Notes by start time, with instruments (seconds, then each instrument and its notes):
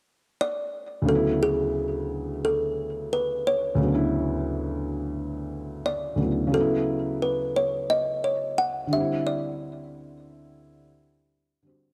0.41 kalimba D5
1.02 felt piano D2 C#3
1.08 felt piano F#3 B3, kalimba A4
1.15 felt piano E4
1.43 kalimba G#4
2.45 kalimba A4
3.13 kalimba B4
3.47 kalimba C#5
3.75 felt piano D2 C#3
3.81 felt piano F#3 B3
3.88 felt piano D4
3.94 felt piano E4
5.86 kalimba D5
6.16 felt piano D2 C#3 F#3
6.20 felt piano B3 E4
6.47 felt piano C#3
6.52 felt piano F#3, kalimba A4
6.56 felt piano B3
6.60 felt piano E4
7.22 kalimba B4
7.56 kalimba C#5
7.90 kalimba D#5
8.24 kalimba C#5
8.58 kalimba F#5
8.87 felt piano D3
8.92 felt piano G3, kalimba E5
8.96 felt piano C4
9.00 felt piano E4
9.27 kalimba D5
11.62 felt piano D3 G3
11.67 felt piano C4 F#4